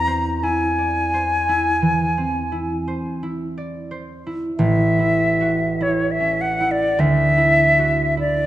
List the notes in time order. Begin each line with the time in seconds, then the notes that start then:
Already playing: E2 C4 E4 D5 A#5
0.07 C5
0.43 E4 G#5
0.78 D5
1.14 C5
1.49 E4
1.82 E3
2.18 C4
2.52 E4
2.88 C5
3.23 E4
3.58 D5
3.91 C5
4.27 E4
4.57 A1 E5
4.99 E4
5.41 F#4
5.81 E4 C#5
6.11 E5
6.20 C#4
6.41 F#5
6.60 E4
6.71 D5
6.99 D2 E5
7.38 E4
7.79 F#4
8.17 E4 D5